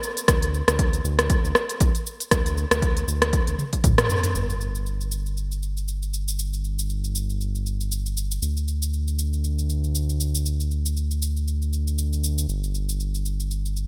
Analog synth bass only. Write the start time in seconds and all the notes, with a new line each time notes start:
0.28 D2
0.68 D2
1.04 D2
1.44 D2
1.81 C2
2.32 D2
2.71 D2
3.08 D2
3.48 D2
3.84 D2
4.35 G1
8.42 D2
12.49 G1